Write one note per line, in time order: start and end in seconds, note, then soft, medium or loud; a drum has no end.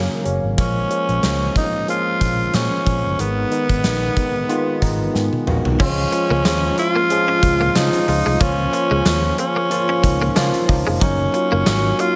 0.00 0.24 C#3 loud
0.00 0.25 F#3 medium
0.00 0.25 A#3 medium
0.00 0.26 A#3 medium
0.00 0.25 C#4 loud
0.00 0.60 D#4 medium
0.24 0.39 F#1 medium
0.24 0.52 C#3 medium
0.24 0.52 F#3 medium
0.24 0.53 A#3 medium
0.24 0.53 C#4 medium
0.24 closed hi-hat medium
0.43 0.54 G#1 medium
0.57 0.83 A#1 medium
0.57 0.85 F3 medium
0.57 0.85 G#3 medium
0.57 0.85 A#3 medium
0.57 0.85 C#4 loud
0.57 1.53 C#4 loud
0.57 kick loud
0.57 closed hi-hat medium
0.89 1.17 F3 medium
0.89 1.18 G#3 medium
0.89 1.18 A#3 medium
0.89 1.18 C#4 medium
0.89 closed hi-hat medium
1.09 1.20 A#1 medium
1.09 closed hi-hat soft
1.23 1.48 C#2 medium
1.23 1.50 F3 medium
1.23 1.50 G#3 medium
1.23 1.51 A#3 medium
1.23 1.51 C#4 medium
1.23 snare loud
1.23 closed hi-hat medium
1.55 1.83 F3 medium
1.55 1.83 G#3 medium
1.55 1.83 A#3 medium
1.55 1.83 C#4 medium
1.55 1.87 D#4 loud
1.55 kick medium
1.55 closed hi-hat medium
1.88 2.16 F3 medium
1.88 2.16 G#3 medium
1.88 2.16 A#3 medium
1.88 2.16 C#4 loud
1.88 2.57 F4 loud
1.88 closed hi-hat medium
2.20 2.46 A#1 medium
2.20 2.48 F3 medium
2.20 2.48 G#3 medium
2.20 2.49 A#3 medium
2.20 2.49 C#4 medium
2.20 kick medium
2.20 closed hi-hat medium
2.53 2.67 A#2 medium
2.53 2.81 F3 medium
2.53 2.81 G#3 medium
2.53 2.81 A#3 medium
2.53 2.81 C#4 medium
2.53 3.22 C#4 medium
2.53 snare loud
2.53 closed hi-hat medium
2.86 3.00 A#1 medium
2.86 3.13 F3 medium
2.86 3.14 G#3 medium
2.86 3.14 A#3 medium
2.86 3.14 C#4 medium
2.86 kick medium
2.86 closed hi-hat medium
3.04 3.15 F#1 medium
3.18 3.43 G#1 loud
3.18 3.46 D#3 medium
3.18 3.46 G#3 medium
3.18 3.46 B3 medium
3.18 5.48 B3 medium
3.18 3.47 D#4 loud
3.18 closed hi-hat medium
3.51 3.79 D#3 medium
3.51 3.79 G#3 medium
3.51 3.79 B3 medium
3.51 3.79 D#4 medium
3.51 closed hi-hat medium
3.69 3.80 G#1 medium
3.69 kick medium
3.69 closed hi-hat medium
3.84 4.09 A#1 medium
3.84 4.11 D#3 medium
3.84 4.11 G#3 medium
3.84 4.12 B3 medium
3.84 4.12 D#4 medium
3.84 snare loud
3.84 closed hi-hat medium
4.16 4.44 D#3 medium
4.16 4.44 G#3 medium
4.16 4.44 B3 medium
4.16 4.44 D#4 medium
4.16 kick medium
4.16 closed hi-hat medium
4.49 4.76 D#3 loud
4.49 4.76 G#3 loud
4.49 4.77 B3 loud
4.49 4.77 F4 loud
4.49 closed hi-hat medium
4.81 5.06 G#1 medium
4.81 5.09 D#3 medium
4.81 5.09 G#3 medium
4.81 5.09 B3 medium
4.81 5.10 D#4 medium
4.81 5.12 A#5 medium
4.81 kick medium
4.81 closed hi-hat medium
5.14 5.28 G#2 medium
5.14 5.42 D#3 medium
5.14 5.42 G#3 medium
5.14 5.42 B3 medium
5.14 5.42 D#4 medium
5.14 5.45 G#5 medium
5.14 snare medium
5.33 high tom medium
5.47 5.61 A#1 medium
5.47 5.74 D#3 medium
5.47 5.74 G#3 medium
5.47 5.75 B3 medium
5.47 5.75 F#4 medium
5.47 5.78 F5 medium
5.47 mid tom medium
5.65 5.76 B1 medium
5.65 floor tom medium
5.79 6.04 C#2 loud
5.79 6.07 F3 medium
5.79 6.07 G#3 medium
5.79 5.94 C#4 medium
5.79 6.07 C#4 medium
5.79 6.74 C#4 loud
5.79 6.07 F4 loud
5.79 kick loud
5.79 crash loud
6.12 6.40 F3 medium
6.12 6.40 G#3 medium
6.12 6.40 C#4 medium
6.12 6.40 G#4 medium
6.12 muted clean electric guitar stroke soft
6.12 closed hi-hat medium
6.30 6.41 C#2 loud
6.30 6.42 A#3 medium
6.45 6.69 D#2 medium
6.45 6.72 F3 medium
6.45 6.72 G#3 medium
6.45 6.59 G#3 medium
6.45 6.73 C#4 medium
6.45 6.73 F4 medium
6.45 snare loud
6.45 closed hi-hat medium
6.45 tambourine medium
6.77 7.05 F3 medium
6.77 7.05 G#3 medium
6.77 7.05 C#4 medium
6.77 7.05 F4 medium
6.77 7.78 F4 loud
6.77 muted clean electric guitar stroke soft
6.77 closed hi-hat medium
6.96 7.07 A#3 medium
7.10 7.37 F3 loud
7.10 7.38 G#3 medium
7.10 7.38 C#4 medium
7.10 7.38 G#4 loud
7.10 closed hi-hat medium
7.28 7.39 C#4 medium
7.42 7.67 C#2 medium
7.42 7.70 F3 medium
7.42 7.70 G#3 medium
7.42 7.70 C#4 medium
7.42 7.70 F4 medium
7.42 muted clean electric guitar stroke soft
7.42 kick medium
7.42 closed hi-hat medium
7.61 7.72 A#3 medium
7.75 7.89 C#3 medium
7.75 8.02 F3 medium
7.75 8.03 G#3 medium
7.75 7.89 G#3 medium
7.75 8.03 C#4 medium
7.75 8.43 D#4 loud
7.75 8.03 F4 loud
7.75 snare loud
7.75 closed hi-hat medium
7.75 tambourine medium
7.93 closed hi-hat medium
8.07 8.22 C#2 medium
8.07 8.35 F3 medium
8.07 8.35 G#3 medium
8.07 8.35 C#4 medium
8.07 8.36 F4 medium
8.07 muted clean electric guitar stroke soft
8.07 open hi-hat medium
8.26 8.37 C2 medium
8.26 8.37 G#3 medium
8.40 8.65 C#2 loud
8.40 8.68 F3 loud
8.40 8.68 A#3 medium
8.40 8.54 A#3 medium
8.40 8.68 C#4 medium
8.40 9.39 C#4 loud
8.40 8.68 F4 loud
8.40 kick loud
8.40 closed hi-hat medium
8.72 9.00 F3 medium
8.72 9.00 A#3 medium
8.72 9.01 C#4 medium
8.72 9.01 F4 medium
8.72 muted clean electric guitar stroke soft
8.72 closed hi-hat medium
8.91 9.02 C#2 loud
8.91 9.02 G#3 medium
9.05 9.30 D#2 medium
9.05 9.33 F3 medium
9.05 9.20 G#3 medium
9.05 9.33 A#3 medium
9.05 9.33 C#4 medium
9.05 9.33 G#4 medium
9.05 snare loud
9.05 closed hi-hat medium
9.05 tambourine medium
9.38 9.65 F3 medium
9.38 9.66 A#3 medium
9.38 9.66 C#4 medium
9.38 10.65 C#4 medium
9.38 9.66 F4 medium
9.38 muted clean electric guitar stroke soft
9.38 closed hi-hat medium
9.56 9.68 A#3 medium
9.70 9.98 F3 loud
9.70 9.98 A#3 medium
9.70 9.98 C#4 medium
9.70 9.99 F4 loud
9.70 closed hi-hat medium
9.89 10.00 C#4 medium
10.03 10.28 C#2 medium
10.03 10.31 F3 medium
10.03 10.31 A#3 medium
10.03 10.31 C#4 medium
10.03 10.31 D#4 medium
10.03 muted clean electric guitar stroke soft
10.03 kick medium
10.03 closed hi-hat medium
10.21 10.33 A#3 medium
10.35 10.50 C#3 loud
10.35 10.63 F3 loud
10.35 10.50 G#3 medium
10.35 10.63 A#3 loud
10.35 10.64 C#4 loud
10.35 10.64 F4 loud
10.35 snare loud
10.35 closed hi-hat medium
10.35 tambourine medium
10.54 closed hi-hat medium
10.68 10.82 C#2 medium
10.68 10.96 F3 medium
10.68 10.96 A#3 medium
10.68 10.96 C#4 medium
10.68 10.96 D#4 loud
10.68 muted clean electric guitar stroke soft
10.68 kick loud
10.68 open hi-hat medium
10.87 10.98 F1 medium
10.87 10.98 G#3 medium
11.01 11.26 F#1 loud
11.01 11.28 F#3 loud
11.01 11.15 F#3 medium
11.01 11.29 A#3 medium
11.01 11.29 C#4 medium
11.01 12.02 C#4 medium
11.01 11.29 D#4 loud
11.01 kick loud
11.01 closed hi-hat medium
11.33 11.61 F#3 medium
11.33 11.61 A#3 medium
11.33 11.61 C#4 medium
11.33 11.62 F4 medium
11.33 muted clean electric guitar stroke soft
11.33 closed hi-hat medium
11.52 11.63 F#1 loud
11.52 11.63 A#3 medium
11.66 11.91 G#1 loud
11.66 11.94 F#3 medium
11.66 11.80 G#3 medium
11.66 11.94 A#3 medium
11.66 11.94 C#4 medium
11.66 11.94 F#4 medium
11.66 snare loud
11.66 closed hi-hat medium
11.66 tambourine medium
11.99 12.16 F#3 medium
11.99 12.16 A#3 medium
11.99 12.16 C#4 medium
11.99 12.16 F4 loud
11.99 12.16 F#4 medium
11.99 muted clean electric guitar stroke soft
11.99 closed hi-hat medium